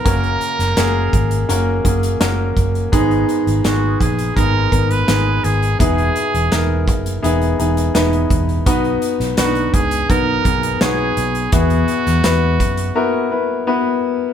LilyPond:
<<
  \new Staff \with { instrumentName = "Trumpet" } { \time 4/4 \key e \lydian \tempo 4 = 84 ais'2~ ais'8 r4. | r4 fis'8 gis'8 ais'8. b'8. gis'8 | gis'2 r2 | r4 fis'8 gis'8 ais'4 gis'4 |
fis'2. r4 | }
  \new Staff \with { instrumentName = "Grand piano" } { \time 4/4 \key e \lydian <ais cis' fis' ais'>4 <ais cis' fis' gis'>4 <ais cis' fis' ais'>8 <ais cis' fis' gis'>8 <ais cis' fis' ais'>4 | <gis b dis' gis'>4 <gis b dis' gis'>4 <gis b dis' gis'>8 <gis b dis' ais'>8 <gis b dis' gis'>4 | <b dis' e' gis'>4 <b dis' e' ais'>4 <b dis' e' gis'>8 <b dis' e' gis'>8 <b dis' e' b'>4 | <b dis' fis' b'>4 <b d' dis' fis' b'>4 <b dis' fis' b'>8 <b dis' fis' gis'>8 <b dis' fis' cis''>4 |
<b e' fis' gis'>4 <b e' fis' b'>4 <b e' fis' ais'>8 <b e' fis' b'>8 <b e' fis' b'>4 | }
  \new Staff \with { instrumentName = "Grand piano" } { \clef bass \time 4/4 \key e \lydian cis4. r2 r8 | <gis, dis>4. r2 r8 | b,4. r2 r8 | r1 |
b,4. r2 r8 | }
  \new Staff \with { instrumentName = "Fingered electric bass" } { \clef bass \time 4/4 \key e \lydian fis,,8 r16 fis,,16 fis,,8 gis,,8 fis,,8 fis,,8 fis,,8 fis,,8 | gis,,8 r16 gis,,16 gis,,8 ais,,8 gis,,8 gis,,8 gis,,8 gis,,8 | e,,8 r16 e,,16 r8 fis,,8 e,,8 e,,8 e,,8 e,,8 | b,,8 r16 b,,16 b,,8 cis,8 b,,8 b,,8 b,,8 b,,8 |
e,8 r16 e,16 e,8 fis,8 r2 | }
  \new DrumStaff \with { instrumentName = "Drums" } \drummode { \time 4/4 <hh bd>16 hh16 hh16 <hh sn>16 <hh sn>8 <hh bd>16 hh16 hh8 <hh bd>16 hh16 <hh sn>8 <hh bd>16 hh16 | <hh bd>16 hh16 hh16 hh16 <hh sn>8 <hh bd>16 hh16 <hh bd>8 <hh bd>16 hh16 <hh sn>8 hh16 hh16 | <hh bd>16 hh16 hh16 hh16 <hh sn>8 <hh bd>16 hh16 hh16 hh16 hh16 hh16 <hh sn>16 hh16 <hh bd>16 hh16 | <hh bd>16 hh16 hh16 <hh sn>16 <hh sn>16 hh16 <hh bd>16 hh16 <hh bd>8 <hh bd>16 hh16 <hh sn>8 hh16 hh16 |
<hh bd>16 hh16 hh16 <hh sn>16 <hh sn>8 <hh bd>16 hh16 r4 r4 | }
>>